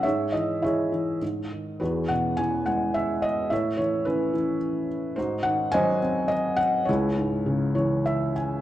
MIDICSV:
0, 0, Header, 1, 2, 480
1, 0, Start_track
1, 0, Key_signature, 4, "minor"
1, 0, Tempo, 584795
1, 34, Time_signature, 3, 2, 24, 8
1, 1954, Tempo, 558659
1, 4354, Tempo, 570342
1, 6274, Tempo, 600000
1, 7200, End_track
2, 0, Start_track
2, 0, Title_t, "Felt piano"
2, 0, Program_c, 0, 0
2, 0, Control_c, 0, 64, 127
2, 25, Note_on_c, 0, 76, 74
2, 36, Note_on_c, 0, 73, 52
2, 37, Note_on_c, 0, 44, 58
2, 39, Note_on_c, 0, 68, 48
2, 45, Control_c, 0, 64, 0
2, 212, Control_c, 0, 64, 127
2, 265, Note_on_c, 0, 75, 64
2, 274, Note_off_c, 0, 76, 0
2, 275, Note_on_c, 0, 52, 40
2, 510, Note_on_c, 0, 64, 46
2, 512, Note_on_c, 0, 76, 64
2, 515, Note_off_c, 0, 68, 0
2, 516, Note_off_c, 0, 73, 0
2, 516, Note_off_c, 0, 75, 0
2, 528, Note_on_c, 0, 68, 52
2, 528, Note_on_c, 0, 73, 51
2, 744, Note_off_c, 0, 52, 0
2, 757, Note_on_c, 0, 52, 43
2, 966, Note_off_c, 0, 76, 0
2, 971, Note_off_c, 0, 44, 0
2, 973, Note_off_c, 0, 68, 0
2, 974, Note_off_c, 0, 73, 0
2, 983, Note_off_c, 0, 64, 0
2, 992, Note_off_c, 0, 52, 0
2, 1002, Note_on_c, 0, 44, 48
2, 1008, Control_c, 0, 64, 0
2, 1154, Control_c, 0, 64, 127
2, 1246, Note_on_c, 0, 51, 35
2, 1469, Note_off_c, 0, 44, 0
2, 1475, Note_on_c, 0, 71, 60
2, 1477, Note_off_c, 0, 51, 0
2, 1485, Note_on_c, 0, 40, 51
2, 1490, Control_c, 0, 64, 0
2, 1493, Note_on_c, 0, 68, 43
2, 1494, Note_on_c, 0, 66, 39
2, 1658, Control_c, 0, 64, 127
2, 1711, Note_on_c, 0, 78, 71
2, 1718, Note_on_c, 0, 47, 39
2, 1723, Note_off_c, 0, 71, 0
2, 1944, Note_on_c, 0, 80, 85
2, 1957, Note_off_c, 0, 78, 0
2, 1959, Note_on_c, 0, 52, 42
2, 2169, Note_off_c, 0, 68, 0
2, 2170, Note_off_c, 0, 66, 0
2, 2192, Note_on_c, 0, 78, 71
2, 2198, Note_on_c, 0, 56, 41
2, 2200, Note_off_c, 0, 80, 0
2, 2437, Note_on_c, 0, 76, 76
2, 2447, Note_off_c, 0, 78, 0
2, 2656, Note_off_c, 0, 47, 0
2, 2677, Note_on_c, 0, 75, 76
2, 2690, Note_off_c, 0, 76, 0
2, 2891, Note_off_c, 0, 40, 0
2, 2898, Note_off_c, 0, 52, 0
2, 2902, Note_off_c, 0, 56, 0
2, 2917, Note_on_c, 0, 76, 69
2, 2924, Note_on_c, 0, 45, 54
2, 2927, Note_off_c, 0, 75, 0
2, 2934, Note_on_c, 0, 69, 42
2, 2935, Control_c, 0, 64, 0
2, 2936, Note_on_c, 0, 73, 50
2, 3075, Control_c, 0, 64, 127
2, 3138, Note_off_c, 0, 73, 0
2, 3151, Note_on_c, 0, 73, 68
2, 3163, Note_on_c, 0, 52, 41
2, 3164, Note_off_c, 0, 76, 0
2, 3390, Note_on_c, 0, 71, 69
2, 3400, Note_off_c, 0, 73, 0
2, 3401, Note_on_c, 0, 61, 48
2, 3407, Note_on_c, 0, 64, 48
2, 3606, Note_off_c, 0, 69, 0
2, 3621, Note_off_c, 0, 52, 0
2, 3634, Note_on_c, 0, 52, 47
2, 3835, Note_off_c, 0, 71, 0
2, 4081, Note_off_c, 0, 64, 0
2, 4320, Note_off_c, 0, 45, 0
2, 4327, Note_off_c, 0, 61, 0
2, 4332, Note_off_c, 0, 52, 0
2, 4342, Note_on_c, 0, 72, 67
2, 4354, Note_on_c, 0, 44, 60
2, 4360, Note_on_c, 0, 66, 52
2, 4361, Note_on_c, 0, 63, 51
2, 4364, Control_c, 0, 64, 0
2, 4512, Control_c, 0, 64, 127
2, 4568, Note_on_c, 0, 78, 88
2, 4595, Note_off_c, 0, 72, 0
2, 4596, Note_on_c, 0, 51, 49
2, 4810, Note_on_c, 0, 80, 102
2, 4827, Note_off_c, 0, 78, 0
2, 4831, Note_on_c, 0, 75, 75
2, 4832, Note_on_c, 0, 72, 73
2, 4837, Note_on_c, 0, 54, 55
2, 5040, Note_off_c, 0, 63, 0
2, 5040, Note_off_c, 0, 66, 0
2, 5067, Note_on_c, 0, 60, 49
2, 5273, Note_off_c, 0, 75, 0
2, 5285, Note_on_c, 0, 75, 79
2, 5316, Note_off_c, 0, 80, 0
2, 5520, Note_off_c, 0, 72, 0
2, 5525, Note_on_c, 0, 78, 90
2, 5526, Note_off_c, 0, 51, 0
2, 5548, Note_off_c, 0, 75, 0
2, 5759, Note_off_c, 0, 44, 0
2, 5766, Note_on_c, 0, 73, 62
2, 5767, Note_off_c, 0, 54, 0
2, 5769, Note_off_c, 0, 60, 0
2, 5786, Note_off_c, 0, 78, 0
2, 5795, Note_on_c, 0, 64, 53
2, 5795, Note_on_c, 0, 68, 47
2, 5796, Note_on_c, 0, 37, 66
2, 5803, Control_c, 0, 64, 0
2, 5949, Control_c, 0, 64, 127
2, 6033, Note_on_c, 0, 44, 45
2, 6278, Note_on_c, 0, 49, 56
2, 6497, Note_off_c, 0, 73, 0
2, 6509, Note_on_c, 0, 73, 61
2, 6510, Note_on_c, 0, 52, 52
2, 6736, Note_off_c, 0, 73, 0
2, 6755, Note_on_c, 0, 76, 69
2, 6965, Note_off_c, 0, 64, 0
2, 6965, Note_off_c, 0, 68, 0
2, 6968, Note_off_c, 0, 44, 0
2, 6980, Note_off_c, 0, 76, 0
2, 6997, Note_on_c, 0, 80, 63
2, 7200, Note_off_c, 0, 37, 0
2, 7200, Note_off_c, 0, 49, 0
2, 7200, Note_off_c, 0, 52, 0
2, 7200, Note_off_c, 0, 80, 0
2, 7200, End_track
0, 0, End_of_file